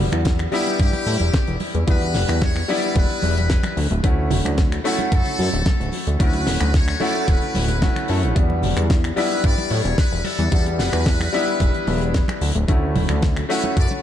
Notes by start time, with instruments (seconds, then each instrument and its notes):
Already playing: grand piano G3 B3 D4 F#4
0.00 synth arpeggio sound F#3
0.12 analog synth bass E2, synth arpeggio sound G3, finger snap, closed hi-hat, high conga
0.25 kick, snare, closed hi-hat, muted conga
0.39 synth arpeggio sound E3, finger snap, closed hi-hat
0.52 synth arpeggio sound F#3, grand piano G3 B3 D4 E4, trumpet section G4, open hi-hat, muted conga
0.67 synth arpeggio sound G3, closed hi-hat
0.79 analog synth bass G2, synth arpeggio sound E3, trumpet section G4, kick, closed hi-hat
0.93 synth arpeggio sound E3, closed hi-hat, muted conga
1.06 analog synth bass A2, synth arpeggio sound F#3, open hi-hat, high conga
1.19 analog synth bass E1, synth arpeggio sound G3, closed hi-hat, muted conga
1.34 kick, snare, closed hi-hat
1.47 analog synth bass E1, synth arpeggio sound E3, closed hi-hat
1.60 synth arpeggio sound F#3, open hi-hat, muted conga
1.75 analog synth bass E2, synth arpeggio sound G3, closed hi-hat
1.87 analog synth bass E2, synth arpeggio sound D3, grand piano G3 B3 D4 F#4, trumpet section B4, kick, closed hi-hat, muted conga
2.02 synth arpeggio sound E3, closed hi-hat
2.14 analog synth bass E1, synth arpeggio sound F#3, snare, open hi-hat
2.28 analog synth bass E2, synth arpeggio sound G3, finger snap, closed hi-hat, muted conga, high conga
2.42 synth arpeggio sound D3, trumpet section C#5, kick, snare, closed hi-hat
2.55 synth arpeggio sound E3, finger snap, closed hi-hat, muted conga
2.68 synth arpeggio sound F#3, grand piano G3 B3 D4 E4, trumpet section D5, open hi-hat
2.83 synth arpeggio sound G3, closed hi-hat
2.95 analog synth bass E1, synth arpeggio sound E3, trumpet section B4, kick, closed hi-hat, muted conga
3.10 synth arpeggio sound E3, closed hi-hat
3.22 analog synth bass E1, synth arpeggio sound F#3, open hi-hat, muted conga, high conga
3.37 synth arpeggio sound G3, closed hi-hat
3.50 synth arpeggio sound D3, kick, snare, closed hi-hat
3.63 synth arpeggio sound E3, finger snap, closed hi-hat, muted conga
3.77 analog synth bass D2, synth arpeggio sound F#3, open hi-hat
3.90 analog synth bass D1, synth arpeggio sound A3, closed hi-hat, muted conga
4.03 analog synth bass D2, synth arpeggio sound C#3, grand piano A3 C#4 E4 F#4, kick, closed hi-hat
4.18 synth arpeggio sound D3
4.30 analog synth bass D1, synth arpeggio sound F#3, open hi-hat, muted conga, low conga
4.44 analog synth bass D2, synth arpeggio sound A3, finger snap, closed hi-hat, high conga
4.57 synth arpeggio sound C#3, kick, snare, closed hi-hat, muted conga
4.72 synth arpeggio sound D3, finger snap, closed hi-hat
4.84 synth arpeggio sound F#3, grand piano A3 C#4 E4 F#4, trumpet section A4, open hi-hat
4.99 synth arpeggio sound A3, closed hi-hat, muted conga
5.12 analog synth bass F#2, synth arpeggio sound D3, trumpet section A4, kick, closed hi-hat
5.26 synth arpeggio sound D3, closed hi-hat, muted conga
5.39 analog synth bass F#2, synth arpeggio sound F#3, open hi-hat, high conga
5.53 analog synth bass D1, synth arpeggio sound A3, closed hi-hat
5.66 synth arpeggio sound C#3, kick, snare, closed hi-hat, muted conga
5.80 analog synth bass D1, synth arpeggio sound D3, closed hi-hat
5.92 synth arpeggio sound F#3, open hi-hat, muted conga
6.07 analog synth bass D2, synth arpeggio sound A3, closed hi-hat
6.19 analog synth bass D2, synth arpeggio sound C#3, grand piano A3 C#4 E4 F#4, trumpet section B4, kick, closed hi-hat
6.33 synth arpeggio sound D3, closed hi-hat, muted conga
6.47 analog synth bass D1, synth arpeggio sound F#3, snare, open hi-hat
6.61 analog synth bass D2, synth arpeggio sound A3, finger snap, closed hi-hat, muted conga, high conga
6.74 synth arpeggio sound C#3, trumpet section C#5, kick, snare, closed hi-hat
6.88 synth arpeggio sound D3, finger snap, closed hi-hat
7.00 synth arpeggio sound F#3, grand piano A3 C#4 E4 F#4, trumpet section D5, open hi-hat, muted conga
7.15 synth arpeggio sound A3, closed hi-hat
7.28 analog synth bass D1, synth arpeggio sound D3, trumpet section B4, kick, closed hi-hat, muted conga
7.42 synth arpeggio sound D3, closed hi-hat
7.54 analog synth bass D1, synth arpeggio sound F#3, open hi-hat, high conga
7.68 synth arpeggio sound A3, closed hi-hat, muted conga
7.82 synth arpeggio sound C#3, grand piano A3 C#4 E4 F#4, kick, snare, closed hi-hat
7.96 synth arpeggio sound D3, finger snap, closed hi-hat, muted conga
8.08 analog synth bass F#2, synth arpeggio sound F#3, grand piano A3 C#4 E4 A4, open hi-hat
8.23 analog synth bass A1, synth arpeggio sound A3, closed hi-hat
8.35 analog synth bass E2, synth arpeggio sound D3, grand piano G3 B3 D4 F#4, kick, closed hi-hat
8.50 synth arpeggio sound B3, muted conga
8.63 analog synth bass E1, synth arpeggio sound F#3, open hi-hat, low conga
8.77 analog synth bass E2, synth arpeggio sound G3, finger snap, closed hi-hat, high conga
8.90 synth arpeggio sound D3, kick, snare, closed hi-hat, muted conga
9.04 synth arpeggio sound E3, finger snap, closed hi-hat
9.16 synth arpeggio sound F#3, grand piano G3 B3 D4 E4, trumpet section B4, open hi-hat, muted conga
9.31 synth arpeggio sound G3, closed hi-hat
9.44 analog synth bass G2, synth arpeggio sound E3, trumpet section D5, kick, closed hi-hat
9.58 synth arpeggio sound E3, closed hi-hat, muted conga
9.70 analog synth bass A2, synth arpeggio sound F#3, trumpet section C#5, open hi-hat, high conga
9.84 analog synth bass E1, synth arpeggio sound G3, closed hi-hat, muted conga
9.97 synth arpeggio sound D3, trumpet section B4, kick, snare, closed hi-hat
10.11 analog synth bass E1, synth arpeggio sound E3, closed hi-hat
10.24 synth arpeggio sound F#3, trumpet section A4, open hi-hat, muted conga
10.39 analog synth bass E2, synth arpeggio sound G3, closed hi-hat
10.51 analog synth bass E2, synth arpeggio sound D3, grand piano G3 B3 D4 F#4, trumpet section A4, kick, closed hi-hat, muted conga
10.66 synth arpeggio sound B3, closed hi-hat
10.79 analog synth bass E1, synth arpeggio sound F#3, trumpet section B4, snare, open hi-hat
10.92 analog synth bass E2, synth arpeggio sound G3, finger snap, closed hi-hat, muted conga, high conga
11.06 synth arpeggio sound D3, kick, snare, closed hi-hat
11.20 synth arpeggio sound E3, finger snap, closed hi-hat, muted conga
11.33 synth arpeggio sound F#3, grand piano G3 B3 D4 E4, open hi-hat
11.47 synth arpeggio sound G3, closed hi-hat
11.60 analog synth bass E1, synth arpeggio sound E3, kick, closed hi-hat, muted conga
11.74 synth arpeggio sound E3, closed hi-hat
11.87 analog synth bass E1, synth arpeggio sound F#3, open hi-hat, muted conga, high conga
12.01 synth arpeggio sound G3, closed hi-hat
12.14 synth arpeggio sound D3, kick, snare, closed hi-hat
12.28 synth arpeggio sound E3, finger snap, closed hi-hat, muted conga
12.41 analog synth bass D2, synth arpeggio sound F#3, open hi-hat
12.55 analog synth bass D1, synth arpeggio sound A3, closed hi-hat, muted conga
12.68 analog synth bass D2, synth arpeggio sound C#3, grand piano A3 C#4 E4 F#4, kick, closed hi-hat
12.83 synth arpeggio sound C#4
12.96 analog synth bass D1, synth arpeggio sound F#3, open hi-hat, muted conga, low conga
13.09 analog synth bass D2, synth arpeggio sound A3, finger snap, closed hi-hat, high conga
13.22 synth arpeggio sound C#3, kick, snare, closed hi-hat, muted conga
13.37 synth arpeggio sound D3, finger snap, closed hi-hat
13.49 synth arpeggio sound F#3, grand piano A3 C#4 E4 F#4, trumpet section B4, open hi-hat
13.63 synth arpeggio sound A3, closed hi-hat, muted conga
13.77 analog synth bass F#2, synth arpeggio sound D3, trumpet section D5, kick, closed hi-hat
13.90 synth arpeggio sound D3, closed hi-hat, muted conga